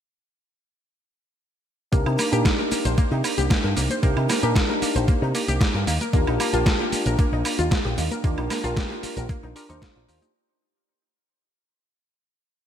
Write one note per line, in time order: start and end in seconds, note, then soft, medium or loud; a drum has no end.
1.92 2.02 C2 loud
1.92 1.98 A#3 loud
1.92 2.29 D4 medium
1.92 2.29 D#4 medium
1.92 2.29 G4 medium
1.92 2.29 A#4 loud
1.92 kick loud
1.92 closed hi-hat medium
1.92 shaker medium
1.92 shaker soft
2.06 2.15 C3 loud
2.06 2.14 D#4 medium
2.06 high woodblock medium
2.06 shaker soft
2.18 2.28 A#3 loud
2.18 open hi-hat loud
2.18 high conga medium
2.18 high woodblock medium
2.18 shaker medium
2.31 2.42 A#2 medium
2.31 3.99 D4 medium
2.31 4.00 D#4 medium
2.31 2.45 G4 loud
2.31 4.00 G4 medium
2.31 4.00 A#4 medium
2.31 closed hi-hat medium
2.31 shaker soft
2.45 2.54 A#3 medium
2.45 kick loud
2.45 snare loud
2.45 closed hi-hat medium
2.45 shaker medium
2.45 shaker soft
2.59 2.64 A#4 medium
2.59 high conga medium
2.59 shaker soft
2.71 2.77 A#3 medium
2.71 muted picked electric bass stroke soft
2.71 open hi-hat loud
2.71 shaker loud
2.71 shaker medium
2.85 2.94 A#1 loud
2.85 2.93 C5 medium
2.85 closed hi-hat medium
2.85 shaker soft
2.97 3.03 A#3 loud
2.97 kick loud
2.97 closed hi-hat medium
2.97 high conga medium
2.97 shaker medium
2.97 shaker soft
3.11 3.21 C3 medium
3.11 3.16 D#4 medium
3.11 shaker soft
3.24 3.33 A#3 medium
3.24 open hi-hat loud
3.24 high woodblock medium
3.24 shaker loud
3.24 shaker medium
3.38 3.47 C2 medium
3.38 3.50 G4 loud
3.38 closed hi-hat medium
3.38 high conga medium
3.38 shaker soft
3.50 3.59 A#3 medium
3.50 kick loud
3.50 snare loud
3.50 closed hi-hat medium
3.50 shaker medium
3.50 shaker soft
3.63 3.73 G2 medium
3.63 3.69 A#4 medium
3.63 shaker soft
3.77 3.87 C2 medium
3.77 3.82 A#3 medium
3.77 open hi-hat loud
3.77 shaker loud
3.77 shaker medium
3.89 3.99 C5 medium
3.89 closed hi-hat medium
3.89 high conga medium
3.89 shaker soft
4.02 4.13 C2 loud
4.02 4.08 A#3 loud
4.02 4.39 D4 medium
4.02 4.40 D#4 medium
4.02 4.40 G4 medium
4.02 4.40 A#4 medium
4.02 kick loud
4.02 closed hi-hat medium
4.02 shaker soft
4.17 4.26 C3 loud
4.17 4.25 D#4 medium
4.17 high woodblock medium
4.17 shaker soft
4.29 4.38 A#3 loud
4.29 snare medium
4.29 open hi-hat loud
4.29 high conga loud
4.29 high woodblock medium
4.29 shaker medium
4.42 4.52 A#2 medium
4.42 5.85 D4 medium
4.42 5.86 D#4 medium
4.42 4.55 G4 loud
4.42 5.86 G4 medium
4.42 5.86 A#4 medium
4.42 closed hi-hat medium
4.42 shaker soft
4.56 4.65 A#3 medium
4.56 kick loud
4.56 snare loud
4.56 closed hi-hat medium
4.56 shaker medium
4.56 shaker soft
4.69 4.74 A#4 medium
4.69 high conga medium
4.69 shaker soft
4.82 4.87 A#3 medium
4.82 muted picked electric bass stroke soft
4.82 open hi-hat loud
4.82 shaker loud
4.82 shaker medium
4.96 5.05 A#1 loud
4.96 5.04 C5 medium
4.96 closed hi-hat medium
4.96 shaker soft
5.08 5.14 A#3 loud
5.08 kick loud
5.08 closed hi-hat medium
5.08 high conga medium
5.08 shaker soft
5.22 5.31 C3 medium
5.22 5.27 D#4 medium
5.22 shaker soft
5.35 5.44 A#3 medium
5.35 open hi-hat loud
5.35 shaker medium
5.48 5.57 C2 medium
5.48 5.60 G4 loud
5.48 closed hi-hat medium
5.48 high conga medium
5.48 shaker soft
5.61 5.70 A#3 medium
5.61 kick loud
5.61 snare loud
5.61 closed hi-hat medium
5.61 shaker medium
5.61 shaker soft
5.74 5.84 G2 medium
5.74 5.80 A#4 medium
5.74 shaker soft
5.87 5.97 D#2 medium
5.87 5.93 A#3 medium
5.87 open hi-hat loud
5.87 shaker medium
5.87 shaker loud
6.01 6.09 A#4 medium
6.01 closed hi-hat medium
6.01 high conga medium
6.01 shaker soft
6.13 6.23 D#2 loud
6.13 6.19 A#3 loud
6.13 6.50 D4 medium
6.13 6.50 F4 medium
6.13 6.51 G4 medium
6.13 6.51 A#4 loud
6.13 kick loud
6.13 closed hi-hat medium
6.13 shaker medium
6.13 shaker soft
6.27 6.36 A#1 loud
6.27 6.36 D#4 medium
6.27 high woodblock medium
6.27 shaker soft
6.40 6.49 A#3 loud
6.40 open hi-hat loud
6.40 high conga medium
6.40 high woodblock medium
6.40 shaker loud
6.40 shaker medium
6.53 6.63 A#1 loud
6.53 8.21 D4 medium
6.53 8.21 F4 medium
6.53 6.66 F4 loud
6.53 8.21 G4 medium
6.53 8.22 A#4 medium
6.53 closed hi-hat medium
6.53 shaker soft
6.66 6.75 A#3 medium
6.66 kick loud
6.66 snare loud
6.66 closed hi-hat medium
6.66 shaker medium
6.66 shaker soft
6.79 6.85 G4 medium
6.79 high conga medium
6.79 shaker soft
6.92 6.98 A#3 medium
6.92 muted picked electric bass stroke soft
6.92 open hi-hat loud
6.92 shaker medium
7.06 7.15 A#1 loud
7.06 7.14 A#4 medium
7.06 closed hi-hat medium
7.06 shaker soft
7.19 7.24 A#3 loud
7.19 kick loud
7.19 closed hi-hat medium
7.19 high conga loud
7.19 shaker soft
7.32 7.42 A#1 medium
7.32 7.38 D#4 medium
7.32 shaker soft
7.45 7.54 A#3 medium
7.45 open hi-hat loud
7.45 high woodblock medium
7.45 shaker medium
7.59 7.68 D#2 medium
7.59 7.71 F4 loud
7.59 closed hi-hat medium
7.59 high conga medium
7.59 shaker soft
7.71 7.80 A#3 medium
7.71 kick loud
7.71 snare loud
7.71 closed hi-hat medium
7.71 shaker medium
7.71 shaker soft
7.85 7.94 A#1 medium
7.85 7.90 G4 medium
7.85 shaker soft
7.98 8.08 D#2 medium
7.98 8.03 A#3 medium
7.98 open hi-hat loud
7.98 shaker loud
7.98 shaker medium
8.11 8.20 A#4 medium
8.11 closed hi-hat medium
8.11 high conga loud
8.11 shaker soft
8.24 8.34 D#2 loud
8.24 8.30 A#3 loud
8.24 8.61 D4 medium
8.24 8.61 F4 medium
8.24 8.61 G4 medium
8.24 8.61 A#4 loud
8.24 kick loud
8.24 closed hi-hat soft
8.24 shaker soft
8.38 8.47 A#1 loud
8.38 8.46 D#4 medium
8.38 high woodblock medium
8.38 shaker soft
8.50 8.59 A#3 loud
8.50 snare medium
8.50 open hi-hat loud
8.50 high conga loud
8.50 high woodblock medium
8.50 shaker medium
8.63 8.73 A#1 loud
8.63 9.53 D4 medium
8.63 9.53 F4 medium
8.63 8.76 F4 loud
8.63 9.53 G4 medium
8.63 9.54 A#4 medium
8.63 closed hi-hat medium
8.63 shaker soft
8.77 8.86 A#3 medium
8.77 kick loud
8.77 snare loud
8.77 closed hi-hat medium
8.77 shaker soft
8.90 8.95 G4 medium
8.90 high conga medium
8.90 shaker soft
9.03 9.08 A#3 medium
9.03 muted picked electric bass stroke soft
9.03 open hi-hat loud
9.03 shaker medium
9.17 9.26 A#1 loud
9.17 9.25 A#4 medium
9.17 closed hi-hat medium
9.17 shaker soft
9.29 9.35 A#3 loud
9.29 kick loud
9.29 closed hi-hat medium
9.29 high conga loud
9.29 shaker soft
9.43 9.52 A#1 loud
9.43 9.48 D#4 medium
9.43 shaker soft
9.55 9.66 D4 loud
9.55 9.66 F4 medium
9.55 9.66 G4 medium
9.55 9.64 A#4 loud
9.55 9.66 A#4 loud
9.55 open hi-hat loud
9.55 shaker medium
9.69 9.79 D#2 medium
9.69 10.05 D4 medium
9.69 9.78 D#4 loud
9.69 10.05 F4 medium
9.69 10.05 G4 medium
9.69 10.06 C5 medium
9.69 closed hi-hat medium
9.69 high conga medium
9.69 shaker soft
9.82 9.91 F4 medium
9.82 kick loud
9.82 snare loud
9.82 closed hi-hat soft
9.82 shaker medium
9.82 shaker soft
9.96 10.05 A#1 medium
9.96 10.08 F4 medium
9.96 shaker soft
10.08 10.18 D#2 medium
10.08 10.31 D4 medium
10.08 10.32 F4 medium
10.08 10.32 G4 medium
10.08 10.21 A#4 medium
10.08 10.32 C5 medium
10.08 open hi-hat loud
10.08 shaker medium
10.22 10.27 D#4 medium
10.22 closed hi-hat medium
10.22 high conga medium
10.22 shaker soft